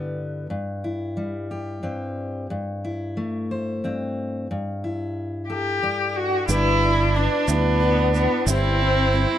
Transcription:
0.00 0.49 G2 medium
0.00 0.46 D3 soft
0.00 0.46 G3 soft
0.00 0.46 B3 soft
0.00 0.84 E4 soft
0.00 0.47 B4 soft
0.50 1.82 G2 medium
0.84 2.84 E4 soft
1.17 2.46 G3 soft
1.51 2.50 G4 soft
1.83 2.49 G2 soft
1.83 2.46 C4 soft
2.50 3.83 G2 medium
2.85 4.84 E4 soft
3.17 4.46 A3 soft
3.51 4.46 C5 soft
3.84 4.50 G2 soft
3.84 4.46 C4 soft
4.51 5.81 G2 medium
4.84 6.46 E4 soft
5.49 6.18 G4 medium
5.49 6.45 A4 soft
5.83 8.48 G2 soft
5.83 6.45 D4 soft
6.16 6.49 F#4 medium
6.48 7.27 G1 loud
6.48 8.44 G1 medium
6.48 8.44 G2 medium
6.48 6.82 G3 medium
6.48 7.11 G3 medium
6.48 8.49 D4 loud
6.48 7.11 D4 medium
6.48 6.82 D4 medium
6.48 7.11 E4 medium
6.48 7.17 E4 loud
6.48 6.82 E4 medium
6.48 7.11 B4 medium
6.48 6.80 B4 medium
6.48 7.11 D5 medium
6.48 shaker medium
6.82 7.15 D4 soft
6.82 7.16 E4 medium
6.82 7.15 B4 medium
7.15 7.48 G3 medium
7.15 7.51 D4 loud
7.15 7.48 D4 medium
7.15 7.47 E4 medium
7.15 7.46 B4 medium
7.48 8.26 D2 medium
7.48 8.10 G3 medium
7.48 7.79 G3 medium
7.48 8.14 B3 loud
7.48 8.10 D4 medium
7.48 7.81 D4 medium
7.48 8.10 E4 medium
7.48 7.82 E4 medium
7.48 7.81 B4 medium
7.48 8.10 B4 medium
7.48 8.10 E5 medium
7.48 shaker loud
7.80 8.14 G3 medium
7.80 8.15 D4 medium
7.80 8.15 E4 medium
7.80 8.13 B4 medium
8.14 8.46 B3 loud
8.14 8.47 D4 soft
8.14 8.48 E4 medium
8.14 8.47 B4 medium
8.14 shaker soft
8.47 9.25 G1 loud
8.47 9.38 G1 medium
8.47 9.38 G2 medium
8.47 8.80 G3 medium
8.47 9.09 G3 medium
8.47 9.09 C4 medium
8.47 8.81 C4 medium
8.47 9.38 C4 loud
8.47 9.38 E4 loud
8.47 9.09 E4 medium
8.47 8.80 E4 medium
8.47 9.09 C5 medium
8.47 8.79 C5 medium
8.47 9.10 E5 medium
8.47 shaker loud
8.80 9.12 C4 medium
8.80 9.14 E4 medium
8.80 9.13 C5 medium
9.13 9.38 G3 medium
9.13 9.38 C4 medium
9.13 9.38 E4 medium
9.13 9.38 C5 medium

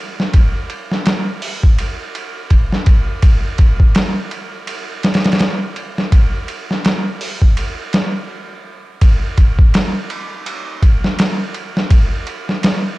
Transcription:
0.20 snare soft
0.34 kick loud
0.34 ride medium
0.70 ride medium
0.92 snare soft
1.06 snare loud
1.06 ride medium
1.42 open hi-hat medium
1.63 kick medium
1.78 ride medium
2.15 ride medium
2.50 kick medium
2.50 ride medium
2.72 snare soft
2.86 kick medium
2.86 ride medium
3.22 kick loud
3.22 ride medium
3.58 kick medium
3.58 ride medium
3.80 kick medium
3.95 snare loud
3.95 ride medium
4.31 ride medium
4.67 ride medium
5.03 snare medium
5.03 ride medium
5.14 snare medium
5.14 ride medium
5.24 snare medium
5.24 ride medium
5.32 snare medium
5.32 ride medium
5.39 snare loud
5.39 ride medium
5.76 ride medium
5.98 snare soft
6.12 kick loud
6.12 ride medium
6.48 ride medium
6.71 snare soft
6.85 snare loud
6.85 ride medium
7.21 open hi-hat medium
7.42 kick medium
7.57 ride medium
7.93 snare loud
7.93 ride medium
9.01 kick loud
9.01 ride medium
9.38 kick medium
9.38 ride medium
9.59 kick loud
9.74 snare loud
9.74 ride medium
10.10 ride medium
10.46 ride medium
10.82 kick medium
10.82 ride medium
11.04 snare soft
11.19 snare loud
11.19 ride medium
11.54 ride medium
11.77 snare medium
11.90 kick loud
11.90 ride medium
12.27 ride medium
12.49 snare soft
12.63 snare loud
12.63 ride medium

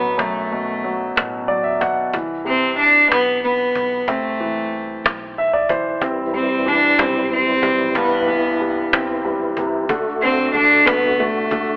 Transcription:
0.00 0.17 A1 medium
0.00 0.52 B2 soft
0.00 0.15 D3 medium
0.00 0.84 F#3 soft
0.00 0.22 B3 medium
0.18 1.12 B1 medium
0.18 2.09 F#2 medium
0.18 1.17 A3 medium
0.18 cajon bass medium
0.52 1.15 B2 soft
0.52 cajon slap soft
0.84 1.47 F#3 soft
0.84 cajon slap soft
1.16 1.77 A1 medium
1.16 1.79 B2 medium
1.16 cajon slap medium
1.48 2.11 F#3 medium
1.48 1.63 D5 medium
1.48 cajon slap soft
1.63 1.79 E5 medium
1.81 2.12 B1 medium
1.81 2.12 B2 medium
1.81 2.11 F#5 medium
1.81 cajon bass medium
2.13 3.07 C2 medium
2.13 4.04 E3 medium
2.13 cajon bass medium
2.45 3.71 C3 medium
2.45 2.77 C4 medium
2.45 cajon slap soft
2.78 3.09 D4 loud
2.78 cajon slap soft
3.11 3.71 B1 medium
3.11 3.41 B3 medium
3.11 cajon slap medium
3.44 4.09 B3 medium
3.44 cajon slap soft
3.75 4.06 B1 medium
3.75 cajon bass medium
4.07 5.01 C2 medium
4.07 5.04 A3 medium
4.07 5.98 C4 medium
4.07 cajon bass medium
4.40 5.66 E3 medium
4.40 cajon slap soft
4.73 cajon slap soft
5.04 5.65 B1 medium
5.04 cajon slap loud
5.37 5.53 E5 medium
5.37 cajon slap soft
5.53 5.68 D5 medium
5.69 6.00 B1 medium
5.69 6.01 E3 medium
5.69 6.00 C5 medium
5.69 cajon bass medium
6.01 6.95 C2 medium
6.01 9.86 E3 medium
6.01 7.94 G3 medium
6.01 7.91 C4 medium
6.01 9.86 E4 medium
6.01 cajon bass loud
6.33 6.97 G3 soft
6.33 6.70 C4 medium
6.33 cajon slap soft
6.66 7.92 E3 soft
6.66 7.02 D4 medium
6.66 cajon slap soft
6.99 7.59 B1 medium
6.99 7.61 G3 medium
6.99 7.32 C4 medium
6.99 cajon slap medium
7.31 7.97 C4 medium
7.31 cajon slap soft
7.63 7.93 B1 medium
7.63 8.59 G3 medium
7.63 cajon bass medium
7.95 8.88 C2 medium
7.95 9.86 G2 medium
7.95 8.92 B3 medium
7.95 cajon bass loud
8.28 9.53 E3 soft
8.28 cajon slap soft
8.60 9.23 G3 soft
8.60 cajon slap soft
8.93 9.53 B1 medium
8.93 9.87 C4 medium
8.93 cajon slap loud
9.25 9.87 G3 medium
9.25 cajon slap soft
9.57 9.87 C2 medium
9.57 9.89 C3 medium
9.57 cajon bass medium
9.89 10.82 D2 loud
9.89 11.77 D3 medium
9.89 10.22 D3 medium
9.89 11.77 A3 medium
9.89 11.77 F#4 medium
9.89 cajon bass loud
10.22 10.53 D3 medium
10.22 10.52 C4 medium
10.54 10.84 D3 soft
10.54 10.87 D4 loud
10.54 cajon slap soft
10.86 11.47 C2 medium
10.86 11.18 D3 medium
10.86 11.21 B3 loud
10.86 cajon slap loud
11.19 11.51 D3 medium
11.19 11.77 A3 medium
11.19 cajon slap soft
11.51 11.77 C2 medium
11.51 11.77 D3 medium
11.51 cajon bass medium

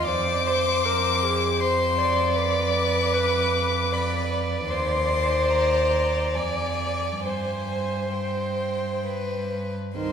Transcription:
0.05 4.67 F2 medium
0.05 1.61 C5 medium
0.05 0.48 D5 medium
0.05 1.62 D6 loud
0.47 0.87 C5 medium
0.85 1.25 A#4 medium
1.23 1.62 G#4 medium
1.60 1.99 C5 medium
1.60 2.37 C5 medium
1.60 2.34 C6 medium
1.98 3.16 D5 medium
2.34 3.94 B4 medium
2.34 3.95 D6 medium
3.14 3.94 B4 medium
3.92 4.72 B4 medium
3.92 4.30 D5 medium
3.92 4.32 B5 medium
4.31 7.26 D5 medium
4.68 6.38 D#2 medium
4.68 6.38 C5 medium
4.68 5.52 C6 medium
5.51 6.36 A#5 medium
6.35 7.24 F2 soft
6.35 7.24 D5 soft
6.35 7.23 G#5 medium
7.23 9.71 G2 soft
7.23 9.52 C5 soft
7.23 8.13 C5 soft
7.23 8.15 G#5 medium
8.14 9.04 C5 soft
8.14 9.52 G5 soft
9.07 9.74 B4 soft
9.96 10.12 C2 medium
9.96 10.12 D#3 medium
9.96 10.12 C5 medium
9.96 10.12 C6 medium

